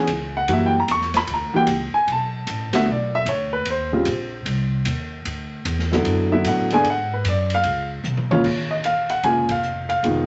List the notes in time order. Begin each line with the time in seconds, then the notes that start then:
Already playing: G#5
0.07 C#2, kick, hi-hat pedal, ride
0.37 F#5
0.48 F#2 E3 G3 A#3 F#4, kick, ride
0.53 E5
0.66 G5
0.80 A#5
0.88 E2 C#6, kick, hi-hat pedal, ride
1.01 snare
1.14 B5, snare, ride
1.27 D2, kick, ride
1.34 A#5
1.54 E3 G3 A#3 F#4 G5, muted upright bass stroke
1.67 C#2, kick, hi-hat pedal, ride
1.94 G#5, muted upright bass stroke
2.07 B1, kick, ride
2.12 A5
2.47 A1, kick, hi-hat pedal, ride
2.73 D3 A3 B3 F#4 E5, muted upright bass stroke, snare, ride
2.86 B1, kick
2.91 D5
3.15 E5
3.25 D2 C#5, kick, hi-hat pedal, ride
3.53 B4
3.65 D#2, kick, ride
3.70 C5
3.92 C#3 G3 C4 F4
4.05 A#1, kick, hi-hat pedal, ride
4.45 C2, kick, ride
4.85 D#2, kick, hi-hat pedal, ride
5.25 D2, kick, ride
5.65 E2, kick, hi-hat pedal, ride
5.79 snare
5.92 D3 F#3 B3 E4, snare
6.05 F#2, kick, ride
6.32 D3 F#3 B3 E4 E5
6.44 A2 F#5, kick, hi-hat pedal, ride
6.70 D3 G#3 B3 D4 G#5, ride
6.84 G#2, kick, ride
6.90 F#5
7.13 B4
7.24 F#2, kick, hi-hat pedal, ride
7.28 D5
7.50 ride
7.54 F5
7.64 C#2, kick, ride
8.04 B1, hi-hat pedal, high tom
8.17 high tom
8.31 C#3 G#3 A#3 F4 C#5, high tom
8.44 A#1, kick, crash
8.71 D#5
8.84 F5, hi-hat pedal, ride
9.09 F#5, ride
9.23 F1 C#3 G#3 A#3 F4 G#5, kick, ride
9.49 F5, kick, ride
9.63 hi-hat pedal
9.89 F5, ride
10.03 F1 D#3 G#3 B3 F4, kick, ride